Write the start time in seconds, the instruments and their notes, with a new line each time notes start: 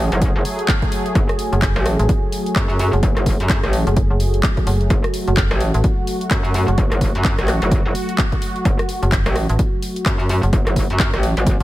Already playing: analog synth pad F#3 A3 G#4
0.12 wobble bass F#1, closed hi-hat
0.22 kick, closed hi-hat
0.36 wobble bass F#1
0.45 open hi-hat
0.59 closed hi-hat
0.68 kick, clap, closed hi-hat
0.82 kick, closed hi-hat
0.92 open hi-hat
1.06 closed hi-hat
1.15 wobble bass F#1, kick, closed hi-hat
1.29 cross-stick, closed hi-hat
1.39 open hi-hat
1.53 fm bass F#1, closed hi-hat
1.62 kick, clap, closed hi-hat
1.76 wobble bass A1, cross-stick, closed hi-hat
1.86 cross-stick, open hi-hat
1.99 fm bass A1, closed hi-hat
2.09 kick, closed hi-hat
2.32 open hi-hat
2.46 closed hi-hat
2.56 wobble bass F#2, kick, clap, closed hi-hat
2.70 closed hi-hat
2.79 open hi-hat
2.93 fm bass F#1, closed hi-hat
3.03 wobble bass F#1, kick, closed hi-hat
3.17 wobble bass F#1, cross-stick, closed hi-hat
3.26 kick, open hi-hat
3.40 wobble bass F#2, closed hi-hat
3.50 kick, clap, closed hi-hat
3.63 wobble bass A1, cross-stick, closed hi-hat
3.73 open hi-hat
3.87 fm bass F#1, closed hi-hat
3.96 kick, closed hi-hat
4.10 fm bass F#1
4.20 open hi-hat
4.34 closed hi-hat
4.43 kick, clap, closed hi-hat
4.57 kick, closed hi-hat
4.67 fm bass F#1, open hi-hat
4.81 closed hi-hat
4.90 wobble bass F#1, analog synth pad F#4, kick, closed hi-hat
5.04 cross-stick, closed hi-hat
5.14 open hi-hat
5.28 fm bass F#1, closed hi-hat
5.37 kick, clap, closed hi-hat
5.51 wobble bass A1, cross-stick, closed hi-hat
5.60 open hi-hat
5.74 fm bass A1, closed hi-hat
5.84 kick, closed hi-hat
6.07 open hi-hat
6.21 closed hi-hat
6.31 wobble bass F#2, kick, clap, closed hi-hat
6.45 closed hi-hat
6.54 open hi-hat
6.68 fm bass F#1, closed hi-hat
6.78 wobble bass F#1, kick, closed hi-hat
6.92 wobble bass F#1, cross-stick, closed hi-hat
7.01 kick, open hi-hat
7.15 wobble bass F#2, closed hi-hat
7.25 kick, clap, closed hi-hat
7.38 wobble bass A1, cross-stick, closed hi-hat
7.48 cross-stick, clap, open hi-hat
7.62 wobble bass F#1, closed hi-hat
7.72 kick, closed hi-hat
7.85 wobble bass F#1
7.95 open hi-hat
8.09 closed hi-hat
8.18 kick, clap, closed hi-hat
8.32 kick, closed hi-hat
8.42 open hi-hat
8.56 closed hi-hat
8.65 wobble bass F#1, kick, closed hi-hat
8.79 cross-stick, closed hi-hat
8.89 open hi-hat
9.03 fm bass F#1, closed hi-hat
9.12 kick, clap, closed hi-hat
9.26 wobble bass A1, cross-stick, closed hi-hat
9.36 cross-stick, open hi-hat
9.49 fm bass A1, closed hi-hat
9.59 kick, closed hi-hat
9.82 open hi-hat
9.96 closed hi-hat
10.06 wobble bass F#2, kick, clap, closed hi-hat
10.20 closed hi-hat
10.29 open hi-hat
10.43 fm bass F#1, closed hi-hat
10.53 wobble bass F#1, kick, closed hi-hat
10.67 wobble bass F#1, cross-stick, closed hi-hat
10.76 kick, open hi-hat
10.90 wobble bass F#2, closed hi-hat
11.00 kick, clap, closed hi-hat
11.14 wobble bass A1, cross-stick, closed hi-hat
11.23 open hi-hat
11.37 wobble bass G#1, closed hi-hat
11.46 kick, closed hi-hat